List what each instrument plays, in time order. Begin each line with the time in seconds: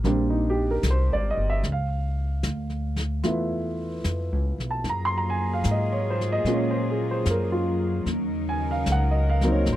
Already playing: grand piano G4 A#4
0.04 upright bass A#1, grand piano G3 A#3 C4 D4, brush sweep, snare
0.30 grand piano D#4
0.50 grand piano G4
0.71 grand piano A#4
0.83 upright bass C2, snare, hi-hat pedal
0.91 grand piano C5
1.10 upright bass G#1, grand piano D5
1.30 grand piano D#5
1.37 upright bass G1
1.50 grand piano E5
1.63 upright bass C#2, brush sweep, snare
1.72 grand piano F5
2.43 upright bass D2, snare, hi-hat pedal
2.70 snare
2.96 snare
2.99 snare
3.23 upright bass E2, grand piano A3 B3 E4 F4, brush sweep, snare
4.04 upright bass F2, snare, hi-hat pedal
4.32 upright bass C#2
4.58 upright bass B1, snare
4.71 grand piano A5
4.84 upright bass F#2, cello section F#3 A#3 F4 G#4, brush sweep, snare
4.89 grand piano A#5
5.05 grand piano C6
5.18 grand piano A#5
5.30 grand piano G#5
5.53 grand piano F5
5.64 upright bass G#2, snare, hi-hat pedal
5.71 grand piano D#5
5.92 grand piano C#5
6.10 grand piano C5
6.21 snare
6.32 grand piano D#5
6.44 upright bass A#2, grand piano G#3 A#3 C#4 F4, brush sweep, snare
6.54 grand piano C#5
6.71 grand piano C5
6.90 grand piano G#4
7.11 grand piano C5
7.26 upright bass F#2, snare, hi-hat pedal
7.31 grand piano A#4
7.52 grand piano F4
8.05 upright bass D#2, cello section C#3 D#4 A#4, brush sweep, snare
8.49 grand piano G#5
8.71 grand piano F5
8.86 upright bass C#2, snare, hi-hat pedal
8.92 grand piano F#5
9.11 grand piano D#5
9.29 grand piano F5
9.41 grand piano F#3 A#3 C4, snare
9.45 grand piano D#4
9.52 grand piano C#5
9.66 upright bass G#1, cello section A#3 C4, brush sweep, snare
9.73 grand piano C5